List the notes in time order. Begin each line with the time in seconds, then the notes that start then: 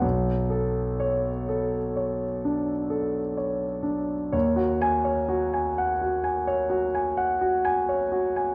0.01 B1
0.50 A4
1.00 C#5
1.49 A4
1.96 C#5
2.45 D4
2.90 A4
3.37 C#5
3.83 D4
4.32 D#2 C#5
4.56 F#4
4.82 G#5
5.04 C#5
5.29 F#4
5.53 G#5
5.78 F#5
6.01 F#4
6.24 G#5
6.47 C#5
6.70 F#4
6.95 G#5
7.17 F#5
7.41 F#4
7.65 G#5
7.89 C#5
8.12 F#4
8.36 G#5